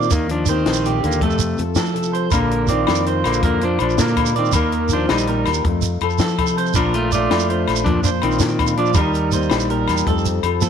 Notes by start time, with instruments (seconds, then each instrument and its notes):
Already playing: steel-string acoustic guitar F2 F4, clean electric guitar C4 D5
0.02 shekere
0.10 fingered electric bass D#2, clean electric guitar D#3 A#3, steel-string acoustic guitar D#3 D#4, muted clean electric guitar stroke, kick, closed hi-hat, shekere
0.29 clean electric guitar F3 D4, closed hi-hat
0.46 clean electric guitar D#3 C4 C5, steel-string acoustic guitar A#3, closed hi-hat, shekere
0.50 steel-string acoustic guitar G4
0.66 fingered electric bass A#1, steel-string acoustic guitar C4, snare, closed hi-hat
0.73 steel-string acoustic guitar D#4, shekere
0.85 steel-string acoustic guitar A#2 G4, clean electric guitar G4, closed hi-hat, shekere
1.03 fingered electric bass D#2, clean electric guitar D3 A#3, closed hi-hat
1.12 shekere
1.21 fingered electric bass F2, steel-string acoustic guitar F2 A3, clean electric guitar C3 A3 A4, kick, closed hi-hat
1.30 shekere
1.39 closed hi-hat, shekere
1.58 fingered electric bass F2, steel-string acoustic guitar F3 A4, closed hi-hat, shekere
1.75 fingered electric bass F3, steel-string acoustic guitar A3, clean electric guitar A4, snare, closed hi-hat, shekere
1.85 shekere
1.94 steel-string acoustic guitar C3 A4, closed hi-hat
2.03 shekere
2.13 clean electric guitar C5, closed hi-hat
2.31 fingered electric bass A#1, steel-string acoustic guitar A#2 A#3, clean electric guitar D3 A#3 A#4, kick, closed hi-hat, low agogo, shekere
2.51 closed hi-hat
2.67 clean electric guitar D#3 C4 D5, steel-string acoustic guitar F3 F4, closed hi-hat, shekere
2.87 fingered electric bass F2, steel-string acoustic guitar A#3, snare, closed hi-hat, low agogo
2.95 shekere
3.06 steel-string acoustic guitar F2 F4, clean electric guitar C5, closed hi-hat
3.24 fingered electric bass A#1, clean electric guitar D3 A#3, snare, closed hi-hat, low agogo
3.33 shekere
3.43 fingered electric bass F2, steel-string acoustic guitar A#2 A#3, clean electric guitar D3 A#3 A#4, kick, closed hi-hat
3.61 clean electric guitar F3 D4 C5, closed hi-hat
3.79 fingered electric bass A#1, steel-string acoustic guitar F3 F4, clean electric guitar F3 D4, closed hi-hat, low agogo
3.90 shekere
3.98 fingered electric bass A#2, clean electric guitar D3 A#3 A#4, steel-string acoustic guitar A#3, snare, closed hi-hat, shekere
4.07 shekere
4.17 steel-string acoustic guitar F2 F4, kick, closed hi-hat, low agogo
4.26 shekere
4.36 clean electric guitar D#3 C4 D5, closed hi-hat
4.45 shekere
4.52 fingered electric bass D#2, clean electric guitar D#3 A#3 A#4, steel-string acoustic guitar D#3 D#4, kick, closed hi-hat, low agogo, shekere
4.72 closed hi-hat
4.89 steel-string acoustic guitar A#3 G4, closed hi-hat, shekere
4.93 clean electric guitar F3 D4 C5
5.09 fingered electric bass A#1, clean electric guitar G3 D#4, snare, closed hi-hat, low agogo
5.18 shekere
5.27 steel-string acoustic guitar A#2 G4, clean electric guitar A#4, closed hi-hat
5.46 fingered electric bass D#2, snare, closed hi-hat, low agogo
5.53 shekere
5.65 fingered electric bass F2, steel-string acoustic guitar F2 A3, muted clean electric guitar stroke, kick, closed hi-hat
5.82 closed hi-hat, shekere
6.01 fingered electric bass F2, steel-string acoustic guitar F3 A4, closed hi-hat, low agogo
6.10 shekere
6.18 fingered electric bass F3, clean electric guitar A4, snare, closed hi-hat, shekere
6.28 shekere
6.38 steel-string acoustic guitar C3 A4, kick, closed hi-hat, low agogo
6.47 shekere
6.58 clean electric guitar C5, closed hi-hat
6.66 shekere
6.74 fingered electric bass A#1, steel-string acoustic guitar A#2 A#3, clean electric guitar F3 D4 A#4, kick, closed hi-hat, low agogo, shekere
6.94 clean electric guitar A3 F4, closed hi-hat
7.12 steel-string acoustic guitar F3 D4, clean electric guitar A3 F4 D5, closed hi-hat, shekere
7.31 fingered electric bass F2, snare, closed hi-hat, low agogo
7.39 shekere
7.49 steel-string acoustic guitar F2 D4, clean electric guitar C5, closed hi-hat
7.68 fingered electric bass A#1, snare, closed hi-hat, low agogo
7.76 shekere
7.84 fingered electric bass F2, steel-string acoustic guitar A#2 A#3, clean electric guitar F3 D4, muted clean electric guitar stroke, kick, closed hi-hat
8.03 clean electric guitar F3 D4 C5, closed hi-hat, shekere
8.22 fingered electric bass A#1, clean electric guitar D#3 C4, steel-string acoustic guitar F3 F4, closed hi-hat, low agogo
8.31 shekere
8.39 fingered electric bass A#2, steel-string acoustic guitar A#3, muted clean electric guitar stroke, snare, closed hi-hat, shekere
8.48 shekere
8.59 steel-string acoustic guitar F2 F4, kick, closed hi-hat, low agogo
8.67 shekere
8.77 clean electric guitar F3 D4 D5, closed hi-hat
8.86 shekere
8.94 fingered electric bass D#2, clean electric guitar G3 D#4 A#4, kick, closed hi-hat, low agogo, shekere
8.98 steel-string acoustic guitar D#3 D#4
9.14 closed hi-hat, shekere
9.32 steel-string acoustic guitar A#3 G4, clean electric guitar C5, closed hi-hat, shekere
9.42 shekere
9.50 fingered electric bass A#1, steel-string acoustic guitar D#4, snare, closed hi-hat, low agogo, shekere
9.59 shekere
9.70 steel-string acoustic guitar A#2 G4, clean electric guitar A#4, closed hi-hat
9.88 fingered electric bass E2, snare, closed hi-hat, low agogo, shekere
9.97 shekere
10.07 fingered electric bass F2, steel-string acoustic guitar F2 F3 A3 C4 A4, clean electric guitar A4, kick, closed hi-hat
10.18 shekere
10.25 closed hi-hat, shekere
10.43 fingered electric bass F2, steel-string acoustic guitar F3 A4, closed hi-hat, low agogo
10.61 fingered electric bass F3, steel-string acoustic guitar A3, clean electric guitar A4, high tom, shekere